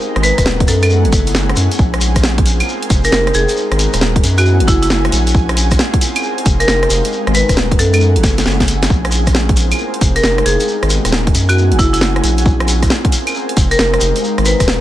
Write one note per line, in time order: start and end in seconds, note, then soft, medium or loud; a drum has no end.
0.00 0.68 G#3 medium
0.00 1.12 B3 medium
0.00 0.67 B3 medium
0.00 0.30 D#4 medium
0.00 0.66 D#4 medium
0.00 0.67 F#4 medium
0.00 0.67 A#5 medium
0.00 shekere soft
0.16 0.32 G#1 loud
0.16 1.79 F#5 medium
0.16 cross-stick medium
0.16 closed hi-hat soft
0.23 0.60 B4 medium
0.23 open hi-hat loud
0.23 shekere medium
0.38 0.66 D#1 medium
0.38 kick medium
0.38 cross-stick medium
0.38 closed hi-hat medium
0.38 shekere medium
0.46 snare loud
0.46 shekere soft
0.60 kick loud
0.60 closed hi-hat medium
0.67 1.06 F#2 medium
0.67 1.78 A3 medium
0.67 2.66 C#4 medium
0.67 1.79 E4 medium
0.67 1.78 E4 medium
0.67 1.78 G#4 medium
0.67 0.77 A4 medium
0.67 open hi-hat loud
0.67 shekere loud
0.82 1.79 A3 medium
0.82 0.88 A4 medium
0.82 closed hi-hat medium
0.82 claves medium
0.82 shekere medium
0.90 shekere soft
1.05 1.54 F#1 loud
1.05 closed hi-hat soft
1.12 kick loud
1.12 open hi-hat loud
1.12 shekere medium
1.19 2.68 G#5 medium
1.27 closed hi-hat medium
1.27 shekere medium
1.35 snare loud
1.35 shekere soft
1.49 cross-stick medium
1.49 closed hi-hat soft
1.56 1.68 F#2 medium
1.56 open hi-hat loud
1.56 shekere medium
1.72 closed hi-hat medium
1.72 shekere medium
1.79 2.62 A#1 medium
1.79 2.67 C4 medium
1.79 2.67 F4 medium
1.79 3.55 G#4 medium
1.79 kick loud
1.79 shekere soft
1.94 3.06 C5 medium
1.94 cross-stick medium
1.94 closed hi-hat soft
2.00 3.06 A#4 medium
2.00 open hi-hat loud
2.00 shekere medium
2.15 kick medium
2.15 cross-stick medium
2.15 closed hi-hat medium
2.15 shekere medium
2.24 snare loud
2.24 shekere soft
2.38 kick loud
2.38 closed hi-hat medium
2.46 open hi-hat loud
2.46 shekere medium
2.60 closed hi-hat medium
2.60 claves medium
2.60 shekere medium
2.68 3.56 C4 medium
2.68 3.85 D#4 medium
2.68 4.22 D#4 medium
2.68 3.56 G4 medium
2.68 shekere soft
2.74 3.85 G#3 medium
2.83 closed hi-hat medium
2.90 3.09 F1 loud
2.90 kick loud
2.90 open hi-hat loud
2.90 shekere medium
3.04 3.11 A#4 medium
3.04 closed hi-hat medium
3.04 shekere medium
3.12 3.31 F1 medium
3.12 3.33 A#4 medium
3.12 snare loud
3.12 shekere soft
3.27 cross-stick medium
3.27 closed hi-hat soft
3.34 3.46 F1 loud
3.34 3.51 G#4 medium
3.34 open hi-hat loud
3.34 shekere medium
3.49 closed hi-hat medium
3.49 shekere medium
3.56 4.23 B3 medium
3.56 4.68 B3 medium
3.56 4.23 F#4 medium
3.56 4.23 A#4 medium
3.56 shekere soft
3.71 3.88 G#1 loud
3.71 cross-stick medium
3.71 closed hi-hat soft
3.79 open hi-hat loud
3.79 shekere medium
3.89 5.35 F#5 medium
3.89 6.24 G#5 medium
3.93 4.21 D#1 medium
3.93 cross-stick soft
3.93 closed hi-hat medium
3.93 shekere medium
4.01 snare loud
4.01 shekere soft
4.16 kick loud
4.16 closed hi-hat medium
4.23 4.62 F#2 loud
4.23 5.33 A3 medium
4.23 6.21 C#4 medium
4.23 5.33 E4 medium
4.23 5.35 E4 medium
4.23 5.33 G#4 medium
4.23 open hi-hat loud
4.23 shekere medium
4.38 4.50 F#4 medium
4.38 closed hi-hat medium
4.38 claves medium
4.38 shekere soft
4.42 5.34 A3 medium
4.42 shekere soft
4.60 5.10 F#1 loud
4.60 closed hi-hat medium
4.68 4.77 E4 medium
4.68 kick loud
4.68 open hi-hat loud
4.68 shekere medium
4.82 4.87 E4 medium
4.82 closed hi-hat medium
4.82 shekere soft
4.90 snare loud
4.90 shekere soft
5.05 cross-stick medium
5.05 closed hi-hat soft
5.12 5.77 A#1 loud
5.12 open hi-hat loud
5.12 shekere medium
5.27 closed hi-hat medium
5.27 shekere medium
5.34 7.11 C4 medium
5.34 6.22 F4 medium
5.34 7.11 G#4 medium
5.34 kick loud
5.34 shekere soft
5.49 6.62 A#4 medium
5.49 cross-stick medium
5.49 closed hi-hat soft
5.57 open hi-hat loud
5.57 shekere medium
5.71 kick medium
5.71 cross-stick medium
5.71 closed hi-hat medium
5.71 shekere medium
5.76 6.62 C5 medium
5.76 snare loud
5.76 shekere soft
5.94 kick loud
5.94 closed hi-hat medium
6.01 open hi-hat loud
6.01 shekere medium
6.16 closed hi-hat medium
6.16 claves medium
6.16 shekere soft
6.23 7.77 D#4 medium
6.23 7.40 D#4 medium
6.23 7.11 G4 medium
6.23 shekere soft
6.37 7.79 G#3 medium
6.37 closed hi-hat medium
6.46 6.65 F1 loud
6.46 kick loud
6.46 open hi-hat loud
6.46 shekere medium
6.60 6.66 A#4 medium
6.60 closed hi-hat medium
6.60 shekere soft
6.68 6.87 F1 medium
6.68 6.89 A#4 medium
6.68 snare loud
6.68 shekere soft
6.83 cross-stick medium
6.83 closed hi-hat soft
6.90 7.02 F1 loud
6.90 open hi-hat loud
6.90 shekere medium
7.05 closed hi-hat medium
7.05 shekere medium
7.12 8.23 B3 medium
7.12 7.78 B3 medium
7.12 7.78 F#4 medium
7.12 7.78 A#5 medium
7.12 shekere soft
7.27 7.43 G#1 loud
7.27 8.90 F#5 medium
7.27 cross-stick medium
7.27 closed hi-hat soft
7.35 7.71 B4 loud
7.35 open hi-hat loud
7.35 shekere loud
7.49 7.77 D#1 medium
7.49 kick medium
7.49 cross-stick medium
7.49 closed hi-hat medium
7.49 shekere medium
7.56 snare loud
7.56 shekere soft
7.71 kick loud
7.71 closed hi-hat medium
7.79 8.18 F#2 loud
7.79 8.89 A3 medium
7.79 8.89 C#4 medium
7.79 8.90 E4 medium
7.79 8.89 E4 medium
7.79 10.65 G#4 loud
7.79 7.88 A4 medium
7.79 open hi-hat loud
7.79 shekere medium
7.93 8.90 A3 medium
7.93 7.98 A4 medium
7.93 9.79 G#5 medium
7.93 closed hi-hat medium
7.93 claves medium
7.93 shekere medium
8.00 shekere soft
8.16 8.45 F#1 loud
8.16 closed hi-hat medium
8.23 kick loud
8.23 snare medium
8.23 open hi-hat loud
8.23 shekere medium
8.38 snare medium
8.38 closed hi-hat medium
8.38 shekere medium
8.46 8.88 F#1 loud
8.46 snare medium
8.46 shekere soft
8.60 kick medium
8.60 snare medium
8.60 closed hi-hat soft
8.68 open hi-hat loud
8.68 shekere medium
8.83 snare medium
8.83 closed hi-hat medium
8.83 shekere soft
8.90 9.73 A#1 medium
8.90 10.66 C4 medium
8.90 9.78 C#4 medium
8.90 9.78 F4 medium
8.90 kick loud
8.90 shekere soft
9.05 cross-stick medium
9.05 closed hi-hat soft
9.09 10.17 A#4 medium
9.09 open hi-hat loud
9.09 shekere medium
9.16 10.17 C5 medium
9.27 kick medium
9.27 cross-stick medium
9.27 closed hi-hat medium
9.27 shekere medium
9.35 snare loud
9.35 shekere soft
9.49 kick loud
9.49 closed hi-hat medium
9.56 open hi-hat loud
9.56 shekere loud
9.71 closed hi-hat medium
9.71 claves medium
9.71 shekere medium
9.78 11.33 D#4 medium
9.78 10.96 D#4 medium
9.78 10.67 G4 medium
9.78 shekere soft
9.94 closed hi-hat medium
10.00 10.20 F1 loud
10.00 10.96 G#3 medium
10.00 kick loud
10.00 open hi-hat loud
10.00 shekere loud
10.16 10.22 A#4 medium
10.16 closed hi-hat medium
10.16 shekere soft
10.23 10.43 F1 medium
10.23 10.44 A#4 medium
10.23 snare loud
10.23 shekere soft
10.38 cross-stick medium
10.38 closed hi-hat soft
10.46 10.57 F1 loud
10.46 10.62 G#4 medium
10.46 open hi-hat loud
10.46 shekere medium
10.60 closed hi-hat medium
10.60 shekere medium
10.68 11.79 B3 medium
10.68 11.34 B3 medium
10.68 11.34 F#4 medium
10.68 11.34 A#4 medium
10.68 shekere soft
10.82 10.99 G#1 loud
10.82 13.34 G#5 medium
10.82 cross-stick medium
10.82 closed hi-hat soft
10.90 open hi-hat loud
10.90 shekere loud
11.00 12.46 F#5 medium
11.05 11.32 D#1 medium
11.05 cross-stick medium
11.05 closed hi-hat medium
11.05 shekere medium
11.12 snare loud
11.27 kick loud
11.27 closed hi-hat medium
11.34 11.73 F#2 loud
11.34 12.45 A3 medium
11.34 13.32 C#4 medium
11.34 12.44 E4 medium
11.34 12.46 E4 medium
11.34 14.21 G#4 medium
11.34 open hi-hat loud
11.34 shekere medium
11.49 11.61 F#4 medium
11.49 closed hi-hat medium
11.49 claves medium
11.49 shekere medium
11.58 12.46 A3 medium
11.58 shekere soft
11.72 12.21 F#1 loud
11.72 closed hi-hat medium
11.79 11.88 E4 medium
11.79 kick loud
11.79 open hi-hat loud
11.79 shekere medium
11.93 11.98 E4 medium
11.93 closed hi-hat medium
11.93 shekere medium
12.01 snare loud
12.01 shekere soft
12.16 cross-stick medium
12.16 closed hi-hat soft
12.24 12.88 A#1 loud
12.24 open hi-hat loud
12.24 shekere medium
12.38 closed hi-hat medium
12.38 shekere medium
12.45 14.22 C4 medium
12.45 13.34 F4 medium
12.45 kick loud
12.45 shekere soft
12.59 13.73 A#4 medium
12.59 cross-stick medium
12.59 closed hi-hat soft
12.68 open hi-hat loud
12.68 shekere loud
12.74 13.73 C5 medium
12.82 kick medium
12.82 cross-stick medium
12.82 closed hi-hat medium
12.82 shekere medium
12.90 snare loud
12.90 shekere soft
13.05 kick loud
13.05 closed hi-hat medium
13.12 open hi-hat loud
13.12 shekere loud
13.27 closed hi-hat medium
13.27 claves medium
13.27 shekere medium
13.34 14.51 D#4 medium
13.34 14.81 D#4 medium
13.34 14.23 G4 medium
13.34 shekere soft
13.49 closed hi-hat medium
13.56 13.76 F1 loud
13.56 14.81 G#3 medium
13.56 kick loud
13.56 open hi-hat loud
13.56 shekere medium
13.71 13.77 A#4 medium
13.71 closed hi-hat medium
13.71 shekere medium
13.79 13.98 F1 medium
13.79 14.00 A#4 medium
13.79 snare loud
13.94 cross-stick medium
13.94 closed hi-hat soft
14.01 14.13 F1 loud
14.01 open hi-hat loud
14.01 shekere loud
14.16 closed hi-hat medium
14.16 shekere medium
14.23 14.81 B3 medium
14.23 14.81 F#4 medium
14.23 14.81 A#5 medium
14.23 shekere soft
14.38 14.54 G#1 loud
14.38 cross-stick medium
14.38 closed hi-hat soft
14.45 14.81 B4 medium
14.45 open hi-hat loud
14.45 shekere medium
14.56 14.81 F#5 medium
14.60 14.81 D#1 medium
14.60 kick medium
14.60 cross-stick medium
14.60 closed hi-hat medium
14.60 shekere medium
14.68 snare loud
14.68 shekere soft